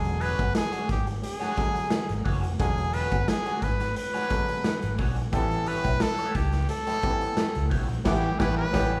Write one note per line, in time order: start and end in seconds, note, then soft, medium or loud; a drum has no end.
0.00 0.33 E1 loud
0.00 0.94 D3 medium
0.00 0.95 F#3 medium
0.00 0.95 G#3 medium
0.00 0.95 C#4 medium
0.00 0.23 G#4 loud
0.05 closed hi-hat medium
0.20 0.43 D4 medium
0.20 0.43 F#4 medium
0.20 0.43 G#4 medium
0.20 0.55 B4 loud
0.20 0.44 C#5 medium
0.20 closed hi-hat medium
0.39 0.53 G1 medium
0.39 kick medium
0.39 closed hi-hat medium
0.54 0.88 G#4 loud
0.54 muted clean electric guitar stroke soft
0.54 snare loud
0.54 closed hi-hat loud
0.72 0.87 D4 medium
0.72 0.87 F#4 medium
0.72 0.88 G#4 medium
0.72 0.88 C#5 medium
0.72 closed hi-hat medium
0.88 1.19 G#1 loud
0.88 1.06 G4 medium
0.88 muted clean electric guitar stroke soft
0.88 kick medium
0.88 closed hi-hat medium
1.06 muted clean electric guitar stroke soft
1.06 closed hi-hat medium
1.22 2.22 G#4 loud
1.22 muted clean electric guitar stroke soft
1.22 closed hi-hat loud
1.39 1.55 D4 medium
1.39 1.55 F#4 medium
1.39 1.56 G#4 medium
1.39 1.56 C#5 medium
1.39 snare soft
1.39 closed hi-hat medium
1.56 2.39 D3 medium
1.56 2.39 F#3 medium
1.56 2.39 G#3 medium
1.56 2.39 C#4 medium
1.56 muted clean electric guitar stroke soft
1.56 kick loud
1.56 closed hi-hat medium
1.74 muted clean electric guitar stroke soft
1.74 closed hi-hat medium
1.90 muted clean electric guitar stroke soft
1.90 snare loud
1.90 closed hi-hat medium
2.09 2.24 G#1 medium
2.09 closed hi-hat medium
2.25 2.44 F#1 loud
2.25 2.43 D4 medium
2.25 2.43 F#4 medium
2.25 2.43 G#4 medium
2.25 2.42 C#5 medium
2.25 kick medium
2.25 open hi-hat medium
2.44 2.58 F1 medium
2.44 muted clean electric guitar stroke soft
2.44 closed hi-hat medium
2.59 3.05 E1 loud
2.59 3.67 D3 medium
2.59 3.68 F#3 medium
2.59 3.68 G#3 medium
2.59 3.68 C#4 medium
2.59 2.95 G#4 loud
2.59 kick loud
2.59 closed hi-hat medium
2.78 closed hi-hat soft
2.93 3.16 D4 medium
2.93 3.16 F#4 medium
2.93 3.16 G#4 loud
2.93 3.30 B4 loud
2.93 3.16 C#5 medium
2.93 closed hi-hat medium
3.11 3.26 G1 medium
3.11 kick loud
3.11 closed hi-hat soft
3.27 3.64 G#4 loud
3.27 muted clean electric guitar stroke soft
3.27 snare loud
3.27 closed hi-hat loud
3.46 3.61 D4 medium
3.46 3.61 F#4 medium
3.46 3.62 G#4 medium
3.46 3.62 C#5 medium
3.46 closed hi-hat soft
3.62 3.92 G#1 loud
3.62 3.97 B4 medium
3.62 muted clean electric guitar stroke soft
3.62 kick medium
3.62 closed hi-hat medium
3.80 muted clean electric guitar stroke medium
3.80 snare soft
3.80 closed hi-hat medium
3.96 4.95 B4 loud
3.96 muted clean electric guitar stroke soft
3.96 closed hi-hat loud
4.13 4.29 D4 medium
4.13 4.29 F#4 medium
4.13 4.30 G#4 medium
4.13 4.30 C#5 medium
4.13 snare soft
4.13 closed hi-hat medium
4.30 5.12 D3 medium
4.30 5.12 F#3 medium
4.30 5.12 G#3 medium
4.30 5.12 C#4 medium
4.30 muted clean electric guitar stroke soft
4.30 kick loud
4.30 closed hi-hat medium
4.49 muted clean electric guitar stroke soft
4.49 closed hi-hat medium
4.64 muted clean electric guitar stroke soft
4.64 snare loud
4.64 closed hi-hat medium
4.82 4.97 G#1 medium
4.82 closed hi-hat medium
4.98 5.17 B1 loud
4.98 5.16 D4 medium
4.98 5.16 F#4 medium
4.98 5.17 G#4 medium
4.98 5.16 C#5 medium
4.98 kick loud
4.98 open hi-hat medium
5.16 5.33 A#1 medium
5.16 muted clean electric guitar stroke soft
5.16 closed hi-hat medium
5.33 5.78 A1 loud
5.33 6.40 E3 medium
5.33 6.41 G3 medium
5.33 6.41 B3 medium
5.33 5.40 C4 medium
5.33 5.69 A4 loud
5.33 kick loud
5.33 closed hi-hat medium
5.40 6.44 C#4 medium
5.51 closed hi-hat soft
5.66 5.89 B3 medium
5.66 5.89 E4 medium
5.66 5.89 G4 medium
5.66 6.03 B4 loud
5.66 5.90 C#5 loud
5.66 closed hi-hat medium
5.84 5.99 B1 medium
5.84 kick medium
5.84 closed hi-hat soft
6.00 6.37 A4 loud
6.00 muted clean electric guitar stroke soft
6.00 snare loud
6.00 closed hi-hat loud
6.18 6.34 B3 medium
6.18 6.34 E4 medium
6.18 6.35 G4 medium
6.18 6.35 C#5 loud
6.18 closed hi-hat medium
6.35 6.65 C#2 loud
6.35 6.69 G4 medium
6.35 muted clean electric guitar stroke soft
6.35 kick medium
6.35 closed hi-hat medium
6.52 muted clean electric guitar stroke soft
6.52 snare soft
6.52 closed hi-hat medium
6.69 7.68 A4 loud
6.69 muted clean electric guitar stroke soft
6.69 closed hi-hat loud
6.87 7.02 B3 medium
6.87 7.02 E4 medium
6.87 7.03 G4 medium
6.87 7.03 C#5 medium
6.87 snare soft
6.87 closed hi-hat medium
7.02 7.84 E3 medium
7.02 7.85 G3 medium
7.02 7.85 B3 medium
7.02 7.11 C4 medium
7.02 muted clean electric guitar stroke soft
7.02 kick loud
7.02 closed hi-hat medium
7.10 7.88 C#4 loud
7.21 muted clean electric guitar stroke soft
7.21 closed hi-hat medium
7.37 muted clean electric guitar stroke soft
7.37 snare loud
7.37 closed hi-hat medium
7.55 7.71 C#2 medium
7.55 closed hi-hat medium
7.70 7.87 B1 loud
7.70 7.88 B3 medium
7.70 7.89 E4 medium
7.70 7.88 G4 medium
7.70 7.87 C#5 medium
7.70 kick medium
7.70 open hi-hat medium
7.88 8.04 A#1 medium
7.88 muted clean electric guitar stroke soft
7.88 closed hi-hat medium
8.04 8.29 A1 loud
8.04 8.29 E3 loud
8.04 8.29 G3 loud
8.04 8.29 B3 medium
8.04 8.29 B3 loud
8.04 8.30 C#4 loud
8.04 8.29 E4 medium
8.04 8.41 G4 loud
8.04 8.30 G4 medium
8.04 8.24 G4 medium
8.04 8.30 C#5 medium
8.04 kick loud
8.04 snare loud
8.04 crash medium
8.39 8.64 A1 loud
8.39 8.63 E3 loud
8.39 8.63 G3 medium
8.39 8.63 B3 loud
8.39 8.64 B3 medium
8.39 8.64 C#4 medium
8.39 8.64 E4 loud
8.39 8.58 G4 loud
8.39 8.64 G4 loud
8.39 8.57 B4 loud
8.39 8.64 C#5 loud
8.39 kick loud
8.39 snare loud
8.57 9.00 B4 loud
8.72 8.98 A1 medium
8.72 8.97 E3 loud
8.72 8.97 G3 loud
8.72 8.98 B3 medium
8.72 8.98 B3 loud
8.72 8.98 C#4 loud
8.72 8.98 E4 loud
8.72 8.97 G4 loud
8.72 8.92 G4 loud
8.72 8.97 C#5 loud
8.72 kick loud
8.72 snare loud